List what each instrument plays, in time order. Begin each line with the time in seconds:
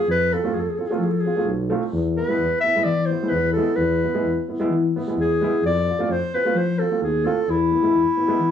0.08 tuba F2, clarinet B4
0.32 upright piano C4 F4, clarinet A4
0.44 upright piano A3 C4 F4
0.54 tuba F2, clarinet G#4
0.59 clarinet A4
0.69 clarinet G#4
0.78 upright piano C4 F4, clarinet A4
0.87 upright piano A3, clarinet G#4
0.92 upright piano C4 F4, clarinet A4
1.00 tuba F3, clarinet G#4
1.10 clarinet A4
1.20 clarinet G#4
1.26 upright piano C4 F4
1.36 upright piano A3 C4 F4
1.45 tuba B1
1.70 upright piano A3 C4 F4
1.93 tuba E2
2.16 upright piano B3 E4, clarinet B4
2.28 upright piano G#3 B3 E4
2.38 tuba E2
2.60 upright piano B3, clarinet E5
2.66 upright piano E4
2.75 upright piano G#3 B3 E4
2.84 tuba E3, clarinet D5
3.06 clarinet C5
3.10 upright piano B3 E4
3.23 upright piano G#3 B3 E4
3.29 tuba E2, clarinet B4
3.52 clarinet A4
3.57 upright piano G#3 B3 E4
3.76 tuba E2, clarinet B4
4.04 upright piano B3 E4
4.14 upright piano G#3 B3 E4
4.24 tuba E2
4.48 upright piano B3 E4
4.60 upright piano G#3 B3 E4
4.70 tuba E3
4.96 upright piano B3 E4
5.07 upright piano G#3 B3 E4
5.16 tuba E2
5.20 clarinet G#4
5.41 upright piano G#3 B3 E4
5.63 tuba F2, clarinet D5
5.88 upright piano C4 F4
5.99 upright piano A3 C4 F4, clarinet D5
6.09 tuba F2, clarinet C5
6.34 upright piano C4 F4, clarinet B4
6.45 upright piano A3 C4 F4
6.55 tuba F3, clarinet C5
6.79 upright piano C4 F4, clarinet A4
6.90 upright piano A3 C4 F4
7.01 tuba D#2, clarinet G#4
7.24 upright piano A3 C4 F4, clarinet A4
7.48 tuba E2, clarinet E4
7.71 upright piano B3 E4
7.82 upright piano G#3 B3 E4
7.94 tuba E2
8.17 upright piano B3 E4
8.28 upright piano G#3 B3 E4
8.40 tuba E3